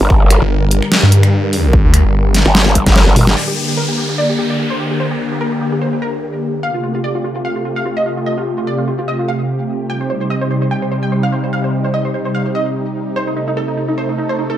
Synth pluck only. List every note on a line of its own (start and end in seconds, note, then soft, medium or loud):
3.37 3.43 D5 medium
3.48 3.53 G4 medium
3.57 3.63 G4 medium
3.68 3.73 G4 medium
3.77 3.84 A#4 medium
3.89 3.94 G4 medium
3.98 4.04 G4 medium
4.09 4.14 G4 medium
4.18 4.24 D5 medium
4.30 4.35 G4 medium
4.39 4.45 G4 medium
4.50 4.55 D5 medium
4.59 4.65 G4 medium
4.70 4.75 C5 medium
4.80 4.86 G4 medium
4.91 4.96 G4 medium
5.00 5.06 C5 medium
5.11 5.16 G4 medium
5.32 5.37 G4 medium
5.41 5.47 A#4 medium
5.52 5.57 G4 medium
5.61 5.67 G4 medium
5.72 5.77 G4 medium
5.82 5.88 C5 medium
5.93 5.98 G4 medium
6.02 6.56 A#4 medium
6.63 6.69 F5 medium
6.74 6.79 F4 medium
6.84 6.90 F4 medium
6.95 7.00 F4 medium
7.04 7.10 D5 medium
7.15 7.20 F4 medium
7.24 7.31 F4 medium
7.36 7.41 F4 medium
7.45 7.51 F5 medium
7.56 7.61 F4 medium
7.65 7.71 F4 medium
7.76 7.81 F5 medium
7.86 7.92 F4 medium
7.97 8.02 D#5 medium
8.06 8.12 F4 medium
8.17 8.22 F4 medium
8.26 8.33 D#5 medium
8.38 8.43 F4 medium
8.58 8.63 F4 medium
8.67 8.73 D5 medium
8.78 8.83 F4 medium
8.88 8.94 F4 medium
8.99 9.04 F4 medium
9.08 9.14 D#5 medium
9.19 9.24 F4 medium
9.28 9.82 F5 medium
9.90 9.96 G5 medium
10.01 10.06 C5 medium
10.10 10.16 C5 medium
10.21 10.26 C5 medium
10.30 10.37 D#5 medium
10.41 10.47 C5 medium
10.51 10.57 C5 medium
10.62 10.67 C5 medium
10.71 10.77 G5 medium
10.82 10.87 C5 medium
10.92 10.98 C5 medium
11.03 11.08 G5 medium
11.12 11.18 C5 medium
11.23 11.28 F5 medium
11.32 11.39 C5 medium
11.44 11.49 C5 medium
11.53 11.59 F5 medium
11.64 11.69 C5 medium
11.85 11.90 C5 medium
11.94 12.00 D#5 medium
12.05 12.10 C5 medium
12.14 12.20 C5 medium
12.25 12.30 C5 medium
12.35 12.41 F5 medium
12.46 12.51 C5 medium
12.55 13.09 D#5 medium
13.16 13.22 C5 medium
13.27 13.32 D#4 medium
13.37 13.43 D#4 medium
13.48 13.53 D#4 medium
13.57 13.63 A4 medium
13.68 13.73 D#4 medium
13.77 13.84 D#4 medium
13.89 13.94 D#4 medium
13.98 14.04 C5 medium
14.09 14.14 D#4 medium
14.18 14.24 D#4 medium
14.29 14.34 C5 medium
14.39 14.45 D#4 medium
14.50 14.55 A4 medium